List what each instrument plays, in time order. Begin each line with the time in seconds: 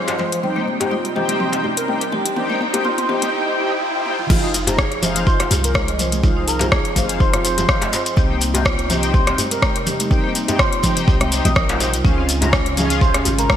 Already playing: analog synth pad F3 C4 F4 G#4, analog synth lead C5, riser
0.08 marimba D#5, closed hi-hat, djembe slap
0.19 marimba C5, mid tom, muted conga, djembe slap, high conga
0.32 marimba C5, closed hi-hat
0.43 analog synth pad C3 G3 D#4, marimba C4, analog polysynth D#4 G4 C5 G5, mid tom, muted conga, low conga
0.56 marimba A#3, high conga
0.67 mid tom, muted conga
0.80 marimba C4, analog polysynth D#4 G4 C5 G5, closed hi-hat, djembe slap, djembe tone, djembe bass
0.91 marimba F4, mid tom, muted conga
1.05 closed hi-hat
1.15 analog polysynth D#4 G4 C5 G5, marimba G4, mid tom, djembe tone, low conga
1.29 closed hi-hat, muted conga, high conga
1.40 marimba C4, analog synth lead C5, mid tom, djembe tone
1.52 marimba C4, analog polysynth D#4 G4 C5 G5, closed hi-hat, djembe slap, muted conga
1.64 mid tom, djembe bass
1.77 marimba C4, analog synth lead A#4, closed hi-hat, muted conga
1.88 analog polysynth D#4 G4 C5 G5, mid tom
2.01 marimba A#4, closed hi-hat
2.12 marimba G4, mid tom, muted conga, high conga, low conga
2.25 marimba G4, closed hi-hat
2.36 analog synth pad A#3, marimba C4, analog polysynth D#4 G4 C5 G5, mid tom, muted conga, low conga
2.50 marimba A#3, mid tom, high conga
2.61 mid tom, muted conga
2.73 marimba C4, analog polysynth D#4 G4 C5 G5, closed hi-hat, mid tom, djembe tone, high conga, djembe bass
2.84 marimba F4, analog synth lead C5, mid tom, muted conga
2.98 analog synth lead C5, closed hi-hat, mid tom
3.09 analog polysynth D#4 G4 C5 G5, marimba G4, mid tom, djembe tone, low conga
3.22 closed hi-hat, mid tom, muted conga, high conga
3.46 analog polysynth D#4 G4 C5 G5
3.57 analog polysynth D#4 G4 C5 G5
3.95 analog polysynth D#4 G4 C5 G5
4.06 high tom
4.19 mid tom
4.30 808-style bass F1, analog synth pad F3 C4 F4 G#4, analog polysynth D#4 G#4 C5 F5, marimba F4, kick, crash, muted conga, high conga, low conga, shekere
4.43 marimba D#4
4.54 open hi-hat, muted conga, shekere
4.67 analog polysynth D#4 G#4 C5 A#5, marimba F4, closed hi-hat, djembe slap, high conga, djembe tone, djembe bass, shekere
4.78 marimba G#4, kick, cross-stick, muted conga, shekere
4.92 closed hi-hat
5.02 analog polysynth D#4 G#4 C5 F5, marimba C5, open hi-hat, mid tom, djembe tone, low conga, shekere
5.16 closed hi-hat, muted conga, shekere
5.26 marimba F4, analog synth lead C5, kick, djembe tone, shekere
5.40 analog polysynth D#4 G#4 C5 F5, marimba F4, cross-stick, closed hi-hat, djembe slap, muted conga
5.50 808-style bass C2, open hi-hat, high conga, djembe bass, shekere
5.64 marimba F4, analog synth lead A#4, closed hi-hat, muted conga, shekere
5.74 analog polysynth D#4 G#4 C5 F5, kick, cross-stick, high conga, shekere
5.88 marimba D#5, closed hi-hat
5.99 marimba C5, open hi-hat, mid tom, muted conga, low conga, shekere
6.12 marimba C5, closed hi-hat, high conga, shekere
6.23 analog polysynth D#4 G#4 C5 F5, marimba F4, kick, muted conga, high conga, low conga, shekere
6.37 marimba D#4
6.48 analog synth lead A#4, open hi-hat, shekere
6.59 analog polysynth D#4 G#4 C5 A#5, marimba F4, closed hi-hat, djembe slap, high conga, djembe tone, djembe bass, shekere
6.72 marimba G#4, kick, cross-stick, muted conga, shekere
6.85 closed hi-hat
6.96 808-style bass F1, analog polysynth D#4 G#4 C5 F5, marimba C5, kick, open hi-hat, mid tom, djembe tone, high conga, low conga, shekere
7.09 closed hi-hat, muted conga, shekere
7.20 marimba F4, analog synth lead C5, kick, shekere
7.33 analog polysynth D#4 G#4 C5 F5, marimba F4, cross-stick, closed hi-hat, muted conga, djembe tone
7.44 analog synth lead C5, open hi-hat, shekere
7.58 marimba F4, closed hi-hat, mid tom, muted conga, djembe tone, high conga, shekere
7.69 analog polysynth D#4 G#4 C5 F5, kick, cross-stick, shekere
7.82 marimba D#5, closed hi-hat, djembe slap, high conga
7.92 marimba C5, open hi-hat, muted conga, djembe slap, shekere
8.06 marimba C5, closed hi-hat, shekere
8.17 808-style bass C2, analog synth pad C3 G3 D#4, marimba C4, analog polysynth D#4 G4 C5 G5, kick, muted conga, high conga, low conga, shekere
8.30 marimba A#3
8.41 open hi-hat, muted conga, shekere
8.54 marimba C4, analog polysynth D#4 G4 C5 G5, closed hi-hat, djembe slap, high conga, djembe tone, djembe bass, shekere
8.65 marimba F4, kick, cross-stick, muted conga, shekere
8.79 closed hi-hat
8.89 analog polysynth D#4 G4 C5 G5, marimba G4, open hi-hat, mid tom, djembe tone, low conga, shekere
9.03 closed hi-hat, muted conga, shekere
9.14 marimba C4, analog synth lead C5, kick, djembe tone, shekere
9.27 marimba C4, analog polysynth D#4 G4 C5 G5, cross-stick, closed hi-hat, muted conga, djembe slap
9.38 open hi-hat, high conga, djembe bass, shekere
9.51 marimba C4, analog synth lead A#4, closed hi-hat, muted conga, shekere
9.62 analog polysynth D#4 G4 C5 G5, kick, cross-stick, high conga, shekere
9.76 marimba A#4, closed hi-hat
9.86 marimba G4, open hi-hat, mid tom, muted conga, low conga, shekere
10.00 marimba G4, closed hi-hat, high conga, shekere
10.11 marimba C4, analog polysynth D#4 G4 C5 G5, kick, muted conga, high conga, low conga, shekere
10.24 marimba A#3
10.35 open hi-hat, muted conga, shekere
10.48 marimba C4, analog polysynth D#4 G4 C5 G5, closed hi-hat, djembe slap, djembe tone, high conga, djembe bass, shekere
10.59 marimba F4, analog synth lead C5, kick, cross-stick, muted conga, shekere
10.72 analog synth lead C5, closed hi-hat
10.83 analog polysynth D#4 G4 C5 G5, marimba G4, kick, open hi-hat, mid tom, high conga, djembe tone, low conga, shekere
10.97 closed hi-hat, muted conga, shekere
11.08 808-style bass C2, marimba C4, kick, shekere
11.20 marimba C4, analog polysynth D#4 G4 C5 G5, cross-stick, closed hi-hat, muted conga, djembe tone, high conga
11.32 analog polysynth D#4 G4 C5 G5, open hi-hat, shekere
11.45 808-style bass A#1, marimba C4, analog synth lead D#5, closed hi-hat, mid tom, muted conga, djembe tone, high conga, shekere
11.55 marimba A#4, analog synth lead D#5, kick, cross-stick, shekere
11.69 analog polysynth D#4 G4 C5 G5, marimba F4, closed hi-hat, djembe slap, high conga
11.80 marimba C5, open hi-hat, muted conga, djembe slap, shekere
11.94 808-style bass C2, marimba F4, closed hi-hat, shekere
12.04 808-style bass C#2, analog synth pad C#3 G#3 F4, analog polysynth C#4 F4 G#4 F5, marimba C#4, kick, muted conga, high conga, low conga, shekere
12.18 marimba C4
12.29 open hi-hat, muted conga, shekere
12.41 marimba C#4, analog polysynth C#4 F4 G#4 A#5, closed hi-hat, djembe slap, djembe tone, high conga, djembe bass, shekere
12.53 marimba F4, kick, cross-stick, muted conga, shekere
12.66 closed hi-hat
12.77 analog polysynth C#4 F4 G#4 F5, marimba G#4, open hi-hat, mid tom, djembe tone, low conga, shekere
12.90 closed hi-hat, muted conga, shekere
13.01 marimba C#4, analog synth lead C5, kick, djembe tone, shekere
13.14 marimba C#4, analog polysynth C#4 F4 G#4 F5, cross-stick, closed hi-hat, djembe slap, muted conga
13.25 808-style bass G#1, open hi-hat, high conga, djembe bass, shekere
13.39 marimba C#4, analog synth lead A#4, closed hi-hat, muted conga, shekere
13.50 analog polysynth C#4 F4 G#4 F5, kick, cross-stick, high conga, shekere